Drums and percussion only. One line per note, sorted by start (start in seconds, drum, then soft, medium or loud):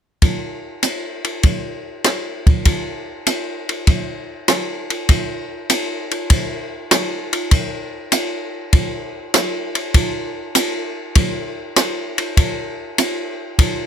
0.22 kick soft
0.22 ride soft
0.83 hi-hat pedal soft
0.83 ride soft
1.24 ride soft
1.43 kick soft
1.43 ride soft
2.04 cross-stick soft
2.04 hi-hat pedal soft
2.04 ride soft
2.47 kick soft
2.47 ride soft
2.65 kick soft
2.65 ride soft
3.27 hi-hat pedal soft
3.27 ride soft
3.69 ride soft
3.87 kick soft
3.87 ride soft
4.48 cross-stick soft
4.48 hi-hat pedal soft
4.48 ride medium
4.90 ride soft
5.09 kick soft
5.09 ride medium
5.70 hi-hat pedal soft
5.70 ride medium
6.11 ride soft
6.30 kick soft
6.30 ride medium
6.91 cross-stick medium
6.91 hi-hat pedal medium
6.91 ride medium
7.33 ride soft
7.51 kick soft
7.51 ride medium
8.12 hi-hat pedal soft
8.12 ride medium
8.73 kick soft
8.73 ride medium
9.34 cross-stick medium
9.34 hi-hat pedal medium
9.34 ride medium
9.75 ride soft
9.94 kick soft
9.94 ride medium
10.55 hi-hat pedal medium
10.55 ride medium
11.15 kick soft
11.15 ride medium
11.76 cross-stick soft
11.76 hi-hat pedal medium
11.76 ride medium
12.18 ride soft
12.37 kick soft
12.37 ride soft
12.98 hi-hat pedal soft
12.98 ride medium
13.59 kick soft
13.59 ride medium